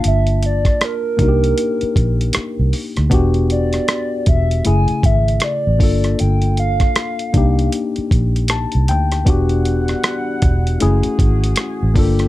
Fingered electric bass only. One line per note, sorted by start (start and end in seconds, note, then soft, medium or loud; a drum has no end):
0.05 0.71 G1 loud
1.20 1.53 C2 medium
1.83 muted fingered electric bass stroke soft
1.97 2.30 A#1 medium
2.37 muted fingered electric bass stroke soft
2.59 2.72 C2 medium
2.98 3.10 D2 medium
3.12 3.79 E1 medium
4.28 4.61 E1 medium
4.67 4.86 F#1 loud
4.90 muted fingered electric bass stroke soft
5.04 5.37 G#1 medium
5.67 5.83 A1 medium
5.81 6.14 G1 medium
6.21 6.87 G1 loud
7.35 7.68 C2 medium
7.98 muted fingered electric bass stroke soft
8.12 8.65 A#1 medium
8.75 8.90 C2 medium
8.90 9.29 D2 medium
9.27 9.94 E1 loud
10.43 10.76 E1 medium
10.83 11.02 F#1 loud
11.06 muted fingered electric bass stroke soft
11.20 11.53 G#1 medium
11.83 11.95 A1 medium
11.97 12.28 G1 medium